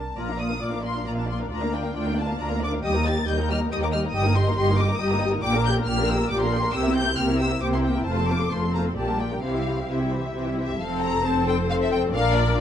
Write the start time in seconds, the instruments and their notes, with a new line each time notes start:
Already playing: double bass section C2, violin section A5
0.16 double bass section A#1, cello section A#2, viola section A#3 F4, violin section D5 A#5
0.27 viola section D4, violin section A#4 F5
0.38 viola section A#3 F4, violin section D5 D#6
0.49 viola section D4, violin section A#4 F5
0.60 double bass section A#1, cello section A#2, viola section A#3 F4, violin section D5 D6
0.71 viola section D4, violin section A#4 F5
0.82 viola section A#3 F4, violin section D5 C6
0.93 viola section D4, violin section A#4 F5
1.05 double bass section A#1, cello section A#2, viola section A#3 F4, violin section D5 A#5
1.16 viola section D4, violin section A#4 F5 A5
1.27 viola section A#3 F4, violin section D5 C6
1.39 viola section D4, violin section A#4 F5
1.50 cello section D2, double bass section D2, viola section D4 F4, violin section D5 A#5
1.61 viola section A#3 D4, violin section A#4 F5
1.72 viola section D4 F4, violin section D5 G5
1.83 viola section A#3 D4, violin section A#4 F5
1.94 cello section D2, double bass section D2, viola section D4 F4, violin section D5 G5
2.05 viola section A#3 D4, violin section A#4 F5
2.16 viola section D4 F4, violin section D5 A5
2.27 viola section A#3 D4, violin section A#4 F5
2.39 cello section D2, double bass section D2, viola section D4 F4, violin section D5 A#5
2.50 viola section A#3 D4, violin section A#4 F5
2.61 viola section D4 F4, violin section D5 D6
2.71 viola section A#3 D4, violin section A#4 F5
2.83 cello section D#2, double bass section D#2, viola section G3 G4, violin section D#5 G5 D#6
2.94 viola section A#3 D#4, violin section A#4 A#5
3.05 viola section G3 G4, violin section D#5 G5 A6
3.15 viola section A#3 D#4, violin section A#4 A#5
3.25 cello section D#2, double bass section D#2, viola section G3 G4, violin section D#5 G5 G6
3.37 viola section A#3 D#4, violin section A#4 A#5
3.48 viola section G3 G4, violin section D#5 G5 F6
3.59 viola section A#3 D#4, violin section A#4 A#5
3.70 cello section D#2, double bass section D#2, viola section G3 G4, violin section D#5 G5 D#6
3.81 viola section A#3 D#4, violin section A#4 A#5 D6
3.92 viola section G3 G4, violin section D#5 G5 F6
4.03 viola section A#3 D#4, violin section A#4 A#5
4.13 double bass section G1, cello section G2, viola section G3 G4, violin section D#5 G5 D#6
4.24 viola section A#3 D#4, violin section A#4 A#5
4.34 viola section G3 G4, violin section D#5 G5 C6
4.45 viola section A#3 D#4, violin section A#4 A#5
4.57 double bass section G1, cello section G2, viola section G3 G4, violin section D#5 G5 C6
4.67 viola section A#3 D#4, violin section A#4 A#5
4.78 viola section G3 G4, violin section D#5 G5 D6
4.89 viola section A#3 D#4, violin section A#4 A#5
4.99 double bass section G1, cello section G2, viola section G3 G4, violin section D#5 G5 D#6
5.11 viola section A#3 D#4, violin section A#4 A#5
5.21 viola section G3 G4, violin section D#5 G5
5.32 viola section A#3 D#4, violin section A#4 A#5
5.43 double bass section A#1, cello section A#2, viola section A#3 G4, violin section D5 G5 D6
5.55 viola section D4 A#4, violin section A#4 A#5
5.66 viola section A#3 G4, violin section D5 G5 G6
5.77 viola section D4 A#4, violin section A#4 A#5
5.87 double bass section A#1, cello section A#2, viola section A#3 G4, violin section D5 G5 F6
5.99 viola section D4 A#4, violin section A#4 A#5
6.09 viola section A#3 G4, violin section D5 G5 E6
6.19 viola section D4 A#4, violin section A#4 A#5
6.30 double bass section A#1, cello section A#2, viola section A#3 G4, violin section D5 G5 D6
6.41 viola section D4 A#4, violin section A#4 A#5 C6
6.52 viola section A#3 G4, violin section D5 G5
6.62 viola section D4 A#4, violin section A#4 A#5
6.72 double bass section C2, cello section C3, viola section A#3 G4, violin section C5 G5 E6
6.82 violin section A#4 E5
6.86 viola section C4 E4
6.93 violin section C5 G5 G6
6.97 viola section A#3 G4
7.05 viola section C4 E4, violin section A#4 E5
7.16 double bass section C2, cello section C3, viola section A#3 G4, violin section C5 G5 F6
7.27 viola section C4 E4, violin section A#4 E5
7.38 viola section A#3 G4, violin section C5 G5 E6
7.50 viola section C4 E4, violin section A#4 E5
7.61 double bass section C2, cello section C3, viola section A#3 G4, violin section C5 G5 D6
7.72 viola section C4 E4, violin section A#4 E5 C6
7.83 viola section A#3 G4, violin section C5 G5
7.93 viola section C4 E4, violin section A#4 E5
8.04 double bass section F1, cello section F2, viola section A3 F4, violin section C5 A5
8.15 viola section C4 A4, violin section A4 C6
8.27 viola section A3 F4, violin section C5 A5 D6
8.39 viola section C4 A4, violin section A4 C6
8.50 double bass section F1, cello section F2, viola section A3 F4, violin section C5 A5 C6
8.60 viola section C4 A4, violin section A4 C6
8.73 viola section A3 F4, violin section C5 A5 A#5
8.84 viola section C4 A4, violin section A4 C6
8.96 double bass section A#1, cello section A#2, viola section A#3 G4, violin section G4 D5 A5
9.08 viola section G3 D4, violin section A#4 G5
9.19 viola section A#3 G4, violin section G4 D5 G5
9.31 viola section G3 D4, violin section A#4 G5
9.42 double bass section C2, cello section C3, viola section E3 G4, violin section E4 C5 F5
9.55 viola section G3 E4, violin section G4 E5
9.66 viola section E3 G4, violin section E4 C5
9.78 viola section G3 E4, violin section G4 E5
9.88 double bass section C2, cello section C3, viola section E3 G4, violin section E4 C5 E5
10.01 viola section G3 E4, violin section G4 E5
10.12 viola section E3 G4, violin section E4 C5
10.24 viola section G3 E4, violin section G4 E5
10.34 double bass section C2, cello section C3, viola section E3 G4, violin section E4 C5
10.46 viola section G3 E4, violin section G4 E5
10.58 viola section E3 G4, violin section E4 C5 E5
10.69 viola section G3 E4, violin section G4 E5
10.80 double bass section F1, cello section F2, viola section C4 A4, violin section A4 F5
11.01 violin section A#5
11.23 viola section C4 A4, violin section C5 A5
11.48 violin section G5
11.69 viola section C4 A4, violin section F5
11.82 violin section E5
11.92 violin section G5
12.12 double bass section A#1, cello section A#2, viola section D4 A#4, violin section D5 F5
12.36 violin section D5
12.57 viola section D4 A#4, violin section F4